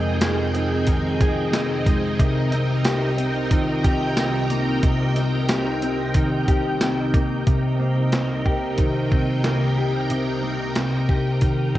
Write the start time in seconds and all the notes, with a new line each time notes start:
Already playing: F2 C3 D#3 G#3 C4 D#4 G#4 A#4 D#5 G5
0.21 F4 G#4, snare, closed hi-hat, tambourine
0.43 G#4
0.55 C4 D#4, closed hi-hat
0.87 D#3, kick, closed hi-hat
1.20 G#4, kick, closed hi-hat
1.53 C4, snare, closed hi-hat, tambourine
1.86 G#3, kick, closed hi-hat
2.19 C2 C3 A#4 G5, kick, closed hi-hat
2.52 C4, closed hi-hat
2.85 G4, snare, closed hi-hat, tambourine
3.18 C4, closed hi-hat
3.51 D#3 F4, kick, closed hi-hat
3.84 G4, kick, closed hi-hat
4.17 C4, snare, closed hi-hat, tambourine
4.50 A#3, closed hi-hat
4.83 C3, kick, closed hi-hat
5.16 C4, closed hi-hat
5.49 D#4 G4, snare, closed hi-hat, tambourine
5.82 C4, closed hi-hat
6.14 D#3, kick, closed hi-hat
6.48 G4, kick, closed hi-hat
6.81 C4, snare, closed hi-hat, tambourine
7.14 A#3 G4, kick, closed hi-hat
7.47 C2 C3 D#4 A#4 G5, kick, closed hi-hat
7.79 A#3 C5
8.01 D#5
8.12 C4, snare, closed hi-hat
8.45 G4 A#4, kick
8.78 D#3, kick, closed hi-hat
9.11 C4 C5, kick
9.44 A#3, snare, closed hi-hat
9.78 G4
10.10 C3, closed hi-hat
10.43 A#3
10.76 C4, snare, closed hi-hat
11.09 G4, kick
11.41 D#3, kick, closed hi-hat
11.75 C4, kick